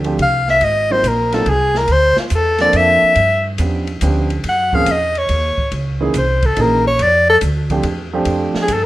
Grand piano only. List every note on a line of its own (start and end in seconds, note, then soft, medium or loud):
0.05 0.17 F3 medium
0.05 0.17 A3 medium
0.05 0.17 C4 medium
0.05 0.18 D4 medium
0.05 0.18 G4 medium
0.90 1.02 F#3 medium
0.90 1.03 A#3 medium
0.90 1.03 C4 medium
0.90 1.03 D#4 medium
0.90 1.03 F4 medium
1.33 1.45 F#3 medium
1.33 1.45 A#3 medium
1.33 1.46 C4 medium
1.33 1.46 D#4 medium
1.33 1.46 F4 medium
2.60 3.14 F3 medium
2.60 3.14 A#3 medium
2.60 3.14 C4 medium
2.60 3.14 D4 medium
2.60 3.15 A4 medium
3.59 3.85 F3 medium
3.59 3.85 B3 soft
3.59 3.85 C#4 soft
3.59 3.85 D4 medium
3.59 3.85 G4 medium
4.02 4.28 F3 medium
4.02 4.28 B3 medium
4.02 4.28 C#4 medium
4.02 4.28 D4 medium
4.02 4.28 G4 medium
4.74 4.86 F3 medium
4.74 4.86 A#3 medium
4.74 4.86 C4 medium
4.74 4.86 C#4 medium
4.74 4.86 G#4 medium
6.01 6.13 E3 medium
6.01 6.13 A#3 medium
6.01 6.13 C#4 medium
6.01 6.13 D#4 medium
6.01 6.14 G#4 medium
6.57 6.82 E3 medium
6.57 6.83 A#3 medium
6.57 6.83 C#4 medium
6.57 6.83 D#4 medium
6.57 6.83 G#4 medium
7.71 7.83 F3 medium
7.71 7.83 A3 medium
7.71 7.83 C4 medium
7.71 7.83 D4 medium
7.71 7.84 G4 medium
8.13 8.67 F3 medium
8.13 8.67 A3 medium
8.13 8.67 C4 medium
8.13 8.67 D4 medium
8.13 8.67 G4 medium